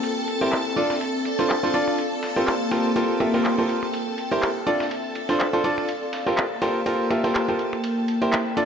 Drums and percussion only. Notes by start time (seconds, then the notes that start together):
0.03 ride
0.28 ride, cabasa
0.41 ride
0.52 clap, ride
0.76 ride
0.90 finger snap, snare
1.01 ride
1.25 ride
1.39 snare
1.50 clap, ride
1.74 ride
1.88 finger snap
1.98 ride
2.23 snare, ride
2.36 snare
2.47 clap, ride
2.72 snare, ride
2.96 ride
3.20 finger snap, ride
3.34 snare
3.45 clap, ride
3.58 ride
3.69 ride
3.83 finger snap
3.93 ride
4.18 ride, cabasa
4.32 ride
4.42 clap, ride
4.67 ride
4.80 finger snap, snare
4.91 ride
5.05 cabasa
5.15 ride, cabasa
5.29 snare
5.40 clap, ride
5.64 ride
5.78 finger snap, cabasa
5.89 ride
6.13 snare, ride, cabasa
6.27 snare, cabasa
6.37 clap, ride, cabasa
6.62 snare, ride, cabasa
6.76 cabasa
6.86 ride
7.00 cabasa
7.11 finger snap, ride, cabasa
7.24 snare
7.35 clap, ride
7.48 ride
7.59 ride, cabasa
7.73 finger snap, cabasa
7.84 ride
7.98 cabasa
8.08 ride, cabasa
8.22 ride, cabasa
8.33 clap, ride, cabasa
8.47 cabasa
8.57 ride, cabasa